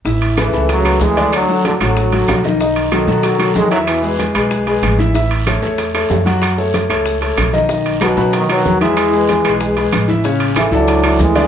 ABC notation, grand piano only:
X:1
M:4/4
L:1/8
Q:1/4=188
K:A
V:1 name="Grand piano"
[E,Ee]2 [A,AB] [A,AB]2 [A,AB]2 [D,Dd]- | [D,Dd] [F,FA]2 [F,FA]2 [F,FA]2 [^D,^D^d] | [^D,^D^d]2 [F,FA] [F,FA]2 [F,FA]2 [E,Ee]- | [E,Ee] [G,GB]2 [G,GB]2 [G,GB]2 [E,Ee] |
[E,Ee]2 [A,Ac] [A,Ac]2 [A,Ac]2 [F,Ff]- | [F,Ff] [A,Ac]2 [A,Ac]2 [A,Ac]2 [^D,^D^d] | [^D,^D^d]2 [F,FB] [F,FB]2 [F,FB]2 [E,Ee]- | [E,Ee] [G,GB]2 [G,GB]2 [G,GB]2 [E,Ee] |
[C,Cc]2 [E,EA] [E,EA]2 [E,EA]2 [D,Dd] |]